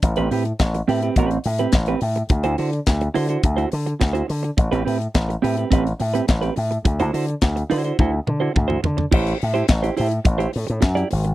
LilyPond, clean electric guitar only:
\new Staff \with { instrumentName = "Clean electric guitar" } { \time 4/4 \key a \dorian \tempo 4 = 106 r16 <c' g' b'>16 <c' g' b'>16 r8. <c' g' b'>16 <c' g' b'>16 <c' g' b'>16 r8 <c' g' b'>16 r16 <c' g' b'>16 r8 | r16 <e' fis' c''>16 <e' fis' c''>16 r8. <e' fis' c''>16 <e' fis' c''>16 r16 <e' fis' c''>16 r8. <e' fis' c''>16 r8 | r16 <c' g' b'>16 <c' g' b'>16 r8. <c' g' b'>16 <c' g' b'>16 <c' g' b'>16 r8 <c' g' b'>16 r16 <c' g' b'>16 r8 | r16 <e' fis' c''>16 <e' fis' c''>16 r8. <e' fis' c''>16 <e' fis' c''>16 <e' fis' c''>16 r8 <e' fis' c''>16 r16 <e' fis' c''>16 r8 |
<e' g' c''>8 r16 <e' g' c''>16 r16 <e' g' c''>16 <e' g' c''>16 r8 <e' g' c''>16 r8. <e' g' d''>16 r8 | }